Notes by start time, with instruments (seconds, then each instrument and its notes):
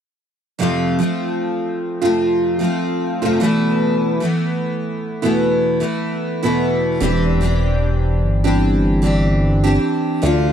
0.59 steel-string acoustic guitar F2 C3 F3 A3 C4 F4
0.99 steel-string acoustic guitar F3 A3 C4 F4
2.02 steel-string acoustic guitar F2 C3 F3 A3 C4 F4
2.59 steel-string acoustic guitar F3 A3 C4 F4
3.22 steel-string acoustic guitar F2 C3 F3 A3 C4 F4
3.40 steel-string acoustic guitar E2 B2 E3 A3 B3 E4
4.20 steel-string acoustic guitar E3 A3 B3 E4
5.22 steel-string acoustic guitar E2 B2 E3 A3 B3 E4
5.80 steel-string acoustic guitar E3 A3 B3 E4
6.43 steel-string acoustic guitar E2 B2 E3 A3 B3 E4
7.00 analog synth bass E1, steel-string acoustic guitar E3 C4 D4 G4
7.41 steel-string acoustic guitar E3 C4 D4 G4
8.22 analog synth bass G1
8.44 steel-string acoustic guitar E3 C4 D4 G4
9.02 steel-string acoustic guitar E3 C4 D4 G4
9.64 steel-string acoustic guitar E3 C4 D4 G4
10.22 analog synth bass D2, steel-string acoustic guitar D3 A3 D4 F4